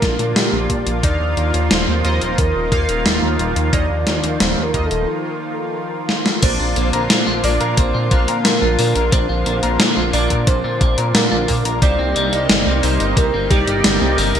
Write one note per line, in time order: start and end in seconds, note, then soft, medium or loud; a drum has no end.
0.00 0.17 A#1 medium
0.00 1.00 D3 medium
0.00 6.39 F3 medium
0.00 0.99 A#3 medium
0.00 6.39 A#3 medium
0.00 0.99 D4 medium
0.00 0.99 F4 medium
0.00 6.39 F4 medium
0.00 0.37 A#4 loud
0.00 0.99 D5 medium
0.00 kick loud
0.00 snare medium
0.00 closed hi-hat medium
0.19 0.34 A#2 medium
0.19 closed hi-hat medium
0.36 0.51 A#2 loud
0.36 0.87 G4 loud
0.36 snare loud
0.36 closed hi-hat medium
0.53 0.68 A#1 medium
0.70 0.85 A#2 medium
0.70 kick medium
0.70 closed hi-hat medium
0.87 1.02 A#1 medium
0.87 closed hi-hat medium
1.03 1.19 D#2 loud
1.03 6.39 D#3 medium
1.03 2.00 A#3 medium
1.03 2.00 D#4 medium
1.03 2.00 F4 medium
1.03 1.67 D5 loud
1.03 2.00 F5 medium
1.03 kick loud
1.03 closed hi-hat medium
1.20 1.35 D#2 medium
1.37 1.52 D#2 medium
1.37 closed hi-hat medium
1.54 1.69 D#2 medium
1.54 closed hi-hat medium
1.71 1.86 D#1 loud
1.71 2.40 C5 loud
1.71 snare loud
1.71 closed hi-hat medium
1.88 2.03 D#2 medium
2.04 2.20 D#2 medium
2.04 2.68 A#3 medium
2.04 2.68 D#4 medium
2.04 2.68 F4 medium
2.04 2.68 D#5 loud
2.04 closed hi-hat medium
2.21 2.37 D#1 medium
2.21 closed hi-hat medium
2.38 2.53 D#2 loud
2.38 3.07 A#4 loud
2.38 kick loud
2.38 closed hi-hat medium
2.55 2.70 D#1 medium
2.72 2.87 D#2 medium
2.72 3.69 A#3 medium
2.72 3.69 D#4 medium
2.72 3.69 F4 medium
2.72 3.69 F5 medium
2.72 kick loud
2.72 closed hi-hat medium
2.89 3.04 D#1 medium
2.89 closed hi-hat medium
3.05 3.21 D#1 loud
3.05 3.56 F4 loud
3.05 snare loud
3.05 closed hi-hat medium
3.22 3.38 D#2 medium
3.39 3.54 D#1 medium
3.39 closed hi-hat medium
3.56 3.71 D#2 medium
3.56 closed hi-hat medium
3.73 3.88 D#2 loud
3.73 3.86 A#3 medium
3.73 3.86 D#4 medium
3.73 3.86 F4 medium
3.73 4.42 D5 loud
3.73 3.86 D#5 medium
3.73 kick loud
3.73 closed hi-hat medium
3.90 4.05 D#2 medium
4.07 4.22 D#2 medium
4.07 snare medium
4.07 closed hi-hat medium
4.24 4.39 D#2 medium
4.24 closed hi-hat medium
4.40 4.56 D#1 loud
4.40 4.64 C5 loud
4.40 snare loud
4.40 closed hi-hat medium
4.57 4.72 D#2 medium
4.63 4.87 A#4 medium
4.74 4.89 D#2 medium
4.74 5.08 A#3 medium
4.74 5.08 D#4 medium
4.74 5.08 F4 medium
4.74 5.08 D#5 medium
4.74 kick medium
4.74 closed hi-hat medium
4.86 5.08 A4 medium
4.91 5.06 D#1 medium
4.91 closed hi-hat medium
6.09 snare medium
6.26 snare medium
6.43 6.58 A#1 loud
6.43 11.78 D3 medium
6.43 11.78 F3 medium
6.43 6.57 A#3 medium
6.43 7.40 A#3 medium
6.43 14.40 A#3 medium
6.43 7.40 D4 medium
6.43 7.40 F4 medium
6.43 11.78 F4 medium
6.43 7.40 C5 medium
6.43 7.46 C5 loud
6.43 7.40 D5 medium
6.43 kick loud
6.43 closed hi-hat loud
6.43 crash loud
6.60 6.75 A#1 medium
6.60 6.74 F4 medium
6.76 6.92 A#1 medium
6.76 6.91 A#3 medium
6.76 closed hi-hat medium
6.93 7.08 A#1 medium
6.93 7.02 A#4 medium
6.93 closed hi-hat medium
7.10 7.25 A#2 loud
7.10 7.19 A#3 loud
7.10 snare loud
7.10 closed hi-hat medium
7.27 7.42 A#1 medium
7.27 7.43 F4 loud
7.44 7.59 A#1 medium
7.44 7.53 A#3 medium
7.44 8.07 A#3 medium
7.44 8.07 D4 medium
7.44 8.07 F4 medium
7.44 7.75 D5 medium
7.44 8.07 D5 loud
7.44 7.77 D5 loud
7.44 open hi-hat medium
7.61 7.76 A#2 medium
7.61 7.77 A#4 medium
7.61 closed hi-hat medium
7.77 7.93 A#1 loud
7.77 7.94 A#3 medium
7.77 8.41 C5 medium
7.77 8.47 C5 loud
7.77 kick loud
7.77 closed hi-hat medium
7.94 8.10 A#2 medium
7.94 8.09 F4 loud
8.11 8.26 A#1 medium
8.11 8.27 A#3 loud
8.11 9.08 A#3 medium
8.11 9.08 D4 medium
8.11 9.08 F4 medium
8.11 9.08 F5 loud
8.11 kick loud
8.11 closed hi-hat medium
8.28 8.43 A#2 medium
8.28 8.37 A#4 loud
8.28 closed hi-hat medium
8.45 8.60 A#2 loud
8.45 8.60 A#3 medium
8.45 8.76 A#4 medium
8.45 8.78 A#4 loud
8.45 snare loud
8.45 closed hi-hat medium
8.62 8.77 A#1 medium
8.62 8.77 F4 medium
8.79 8.94 A#2 medium
8.79 8.93 A#3 medium
8.79 9.14 A#4 loud
8.79 9.10 A#4 medium
8.79 open hi-hat medium
8.95 9.11 A#1 medium
8.95 9.04 A#4 medium
8.95 closed hi-hat medium
9.12 9.28 A#1 loud
9.12 9.25 A#3 medium
9.12 9.21 A#3 loud
9.12 9.25 D4 medium
9.12 9.25 F4 medium
9.12 10.10 C5 medium
9.12 10.13 C5 loud
9.12 9.25 D5 medium
9.12 kick loud
9.12 closed hi-hat loud
9.29 9.44 A#1 medium
9.29 9.45 F4 loud
9.46 9.61 A#1 medium
9.46 9.55 A#3 medium
9.46 closed hi-hat medium
9.63 9.78 A#1 medium
9.63 9.79 A#4 medium
9.63 closed hi-hat medium
9.80 9.95 A#2 loud
9.80 9.96 A#3 medium
9.80 snare loud
9.80 closed hi-hat loud
9.97 10.12 A#1 medium
9.97 10.11 F4 loud
10.13 10.29 A#1 loud
10.13 10.29 A#3 loud
10.13 11.78 A#3 medium
10.13 11.78 D4 medium
10.13 11.78 F4 medium
10.13 11.78 D5 medium
10.13 10.45 D5 medium
10.13 10.49 D5 medium
10.13 open hi-hat medium
10.30 10.46 A#2 medium
10.30 10.39 A#4 loud
10.30 kick medium
10.30 closed hi-hat medium
10.47 10.62 A#1 loud
10.47 10.62 A#3 medium
10.47 11.11 C5 medium
10.47 11.17 C5 loud
10.47 kick loud
10.47 closed hi-hat loud
10.64 10.79 A#2 medium
10.64 10.79 F4 medium
10.81 10.96 A#1 medium
10.81 10.96 A#3 medium
10.81 kick loud
10.81 closed hi-hat medium
10.98 11.13 A#2 medium
10.98 11.07 A#4 medium
10.98 closed hi-hat medium
11.15 11.30 A#2 loud
11.15 11.24 A#3 loud
11.15 11.62 A#4 medium
11.15 11.65 A#4 loud
11.15 snare loud
11.15 closed hi-hat medium
11.31 11.47 A#1 medium
11.31 11.47 F4 loud
11.48 11.63 A#2 medium
11.48 11.57 A#3 medium
11.48 kick medium
11.48 open hi-hat medium
11.65 11.80 A#1 medium
11.65 11.81 A#4 medium
11.65 closed hi-hat medium
11.82 11.97 C2 loud
11.82 14.40 C3 medium
11.82 14.40 G3 medium
11.82 11.98 G3 medium
11.82 12.79 A#3 medium
11.82 14.40 D#4 medium
11.82 12.79 D#4 medium
11.82 12.79 G4 medium
11.82 12.79 C5 medium
11.82 12.79 D5 loud
11.82 12.85 D5 loud
11.82 kick loud
11.82 closed hi-hat medium
11.99 12.14 C2 medium
11.99 12.14 C4 loud
12.16 12.31 C2 medium
12.16 12.32 G3 loud
12.16 closed hi-hat medium
12.33 12.48 C2 medium
12.33 12.41 D#4 loud
12.33 closed hi-hat medium
12.49 12.65 G1 loud
12.49 12.64 G3 medium
12.49 snare loud
12.49 closed hi-hat medium
12.66 12.82 C2 medium
12.66 12.81 C4 medium
12.83 12.98 C2 loud
12.83 12.98 G3 medium
12.83 13.47 A#3 medium
12.83 13.47 D#4 medium
12.83 13.47 G4 medium
12.83 13.47 C5 loud
12.83 13.15 C5 medium
12.83 13.18 C5 loud
12.83 open hi-hat medium
13.00 13.15 G1 medium
13.00 13.09 D#4 medium
13.00 closed hi-hat medium
13.17 13.32 C2 loud
13.17 13.26 G3 loud
13.17 13.50 A#4 loud
13.17 13.48 A#4 medium
13.17 kick loud
13.17 closed hi-hat medium
13.34 13.49 G1 medium
13.34 13.50 C4 loud
13.51 13.66 C2 medium
13.51 13.60 G3 medium
13.51 14.40 A#3 medium
13.51 14.40 D#4 medium
13.51 14.40 G4 medium
13.51 14.14 G4 medium
13.51 14.20 G4 loud
13.51 14.40 D5 loud
13.51 kick loud
13.51 closed hi-hat medium
13.67 13.83 G1 medium
13.67 13.83 D#4 medium
13.67 closed hi-hat medium
13.84 14.00 G1 loud
13.84 14.00 G3 medium
13.84 snare loud
13.84 closed hi-hat medium
14.01 14.16 C2 medium
14.01 14.16 C4 loud
14.18 14.33 G1 medium
14.18 14.34 G3 loud
14.18 14.40 A#4 medium
14.18 14.40 A#4 loud
14.18 open hi-hat medium
14.35 14.40 C2 medium
14.35 14.40 D#4 loud
14.35 closed hi-hat medium